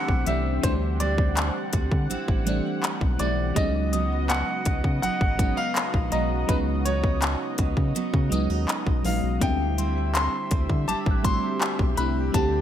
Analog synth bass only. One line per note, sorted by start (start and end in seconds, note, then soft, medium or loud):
0.09 0.25 B1 loud
0.27 0.60 C2 loud
0.64 1.51 D2 loud
1.74 1.90 D2 medium
1.92 2.08 D3 loud
2.10 2.17 A1 medium
2.29 2.61 A1 loud
3.01 3.18 B1 loud
3.20 3.53 B1 medium
3.56 4.44 C#2 loud
4.66 4.83 C#2 medium
4.84 5.01 C#3 loud
5.03 5.10 G#1 medium
5.21 5.54 G#1 medium
5.94 6.11 A#1 loud
6.13 6.45 B1 medium
6.49 7.36 C#2 loud
7.59 7.75 C#2 medium
7.77 7.93 C#3 loud
8.14 8.30 C#3 loud
8.32 8.48 C#2 medium
8.50 8.67 D#2 medium
8.87 9.03 B1 loud
9.05 9.21 A#1 medium
9.23 9.40 B1 loud
9.42 10.29 D2 loud
10.52 10.68 D2 medium
10.70 10.86 D3 loud
10.88 10.95 A1 medium
11.07 11.39 A1 medium
11.80 11.96 B1 medium
11.98 12.31 C2 medium
12.35 12.61 D2 loud